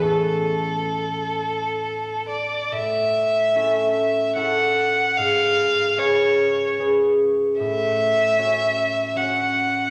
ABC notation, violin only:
X:1
M:3/4
L:1/8
Q:1/4=74
K:A
V:1 name="Violin"
A4- A d | e4 f2 | ^e2 c2 z2 | e4 f2 |]